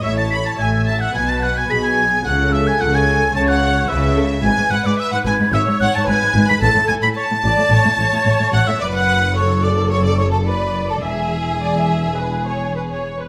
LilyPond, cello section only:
\new Staff \with { instrumentName = "Cello section" } { \clef bass \time 4/4 \key a \lydian \tempo 4 = 109 a,4 a,4 b,4 b,4 | cis4 cis4 cis4 cis4 | \key a \major gis,16 gis,16 gis,16 gis,16 r16 gis,16 gis,16 gis,16 gis,16 gis,16 gis,16 gis,16 gis,16 gis,16 gis,16 gis,16 | a,16 a,16 a,16 a,16 r16 a,16 a,16 a,16 a,16 a,16 a,16 a,16 a,16 a,16 a,16 a,16 |
fis,1 | e,2.~ e,8. r16 | }